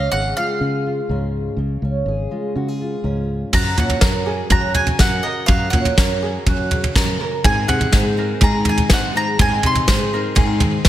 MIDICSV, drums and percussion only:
0, 0, Header, 1, 2, 480
1, 0, Start_track
1, 0, Tempo, 487805
1, 1561, Time_signature, 4, 2, 24, 8
1, 10715, End_track
2, 0, Start_track
2, 0, Title_t, "Drums"
2, 3473, Note_on_c, 9, 43, 104
2, 3473, Note_on_c, 9, 49, 85
2, 3476, Note_on_c, 9, 36, 101
2, 3571, Note_off_c, 9, 43, 0
2, 3571, Note_off_c, 9, 49, 0
2, 3574, Note_off_c, 9, 36, 0
2, 3714, Note_on_c, 9, 43, 76
2, 3813, Note_off_c, 9, 43, 0
2, 3833, Note_on_c, 9, 43, 71
2, 3932, Note_off_c, 9, 43, 0
2, 3948, Note_on_c, 9, 38, 104
2, 3953, Note_on_c, 9, 36, 104
2, 4046, Note_off_c, 9, 38, 0
2, 4051, Note_off_c, 9, 36, 0
2, 4429, Note_on_c, 9, 43, 96
2, 4434, Note_on_c, 9, 36, 96
2, 4527, Note_off_c, 9, 43, 0
2, 4532, Note_off_c, 9, 36, 0
2, 4668, Note_on_c, 9, 43, 77
2, 4766, Note_off_c, 9, 43, 0
2, 4788, Note_on_c, 9, 43, 65
2, 4887, Note_off_c, 9, 43, 0
2, 4910, Note_on_c, 9, 38, 95
2, 4916, Note_on_c, 9, 36, 98
2, 5008, Note_off_c, 9, 38, 0
2, 5014, Note_off_c, 9, 36, 0
2, 5393, Note_on_c, 9, 43, 98
2, 5397, Note_on_c, 9, 36, 102
2, 5491, Note_off_c, 9, 43, 0
2, 5496, Note_off_c, 9, 36, 0
2, 5637, Note_on_c, 9, 43, 81
2, 5735, Note_off_c, 9, 43, 0
2, 5758, Note_on_c, 9, 43, 73
2, 5856, Note_off_c, 9, 43, 0
2, 5880, Note_on_c, 9, 38, 109
2, 5881, Note_on_c, 9, 36, 101
2, 5979, Note_off_c, 9, 36, 0
2, 5979, Note_off_c, 9, 38, 0
2, 6361, Note_on_c, 9, 43, 99
2, 6362, Note_on_c, 9, 36, 101
2, 6459, Note_off_c, 9, 43, 0
2, 6461, Note_off_c, 9, 36, 0
2, 6603, Note_on_c, 9, 43, 81
2, 6701, Note_off_c, 9, 43, 0
2, 6728, Note_on_c, 9, 43, 74
2, 6826, Note_off_c, 9, 43, 0
2, 6844, Note_on_c, 9, 36, 101
2, 6847, Note_on_c, 9, 38, 100
2, 6943, Note_off_c, 9, 36, 0
2, 6945, Note_off_c, 9, 38, 0
2, 7325, Note_on_c, 9, 36, 105
2, 7329, Note_on_c, 9, 43, 103
2, 7424, Note_off_c, 9, 36, 0
2, 7428, Note_off_c, 9, 43, 0
2, 7564, Note_on_c, 9, 43, 83
2, 7663, Note_off_c, 9, 43, 0
2, 7682, Note_on_c, 9, 43, 69
2, 7780, Note_off_c, 9, 43, 0
2, 7798, Note_on_c, 9, 38, 112
2, 7802, Note_on_c, 9, 36, 102
2, 7896, Note_off_c, 9, 38, 0
2, 7901, Note_off_c, 9, 36, 0
2, 8273, Note_on_c, 9, 43, 101
2, 8282, Note_on_c, 9, 36, 102
2, 8372, Note_off_c, 9, 43, 0
2, 8380, Note_off_c, 9, 36, 0
2, 8512, Note_on_c, 9, 43, 82
2, 8610, Note_off_c, 9, 43, 0
2, 8635, Note_on_c, 9, 43, 74
2, 8733, Note_off_c, 9, 43, 0
2, 8753, Note_on_c, 9, 38, 107
2, 8760, Note_on_c, 9, 36, 105
2, 8851, Note_off_c, 9, 38, 0
2, 8859, Note_off_c, 9, 36, 0
2, 9241, Note_on_c, 9, 43, 110
2, 9243, Note_on_c, 9, 36, 107
2, 9340, Note_off_c, 9, 43, 0
2, 9342, Note_off_c, 9, 36, 0
2, 9477, Note_on_c, 9, 43, 81
2, 9575, Note_off_c, 9, 43, 0
2, 9596, Note_on_c, 9, 43, 71
2, 9695, Note_off_c, 9, 43, 0
2, 9719, Note_on_c, 9, 38, 111
2, 9722, Note_on_c, 9, 36, 107
2, 9817, Note_off_c, 9, 38, 0
2, 9820, Note_off_c, 9, 36, 0
2, 10193, Note_on_c, 9, 43, 102
2, 10200, Note_on_c, 9, 36, 97
2, 10291, Note_off_c, 9, 43, 0
2, 10298, Note_off_c, 9, 36, 0
2, 10432, Note_on_c, 9, 43, 86
2, 10531, Note_off_c, 9, 43, 0
2, 10673, Note_on_c, 9, 38, 105
2, 10679, Note_on_c, 9, 36, 109
2, 10715, Note_off_c, 9, 36, 0
2, 10715, Note_off_c, 9, 38, 0
2, 10715, End_track
0, 0, End_of_file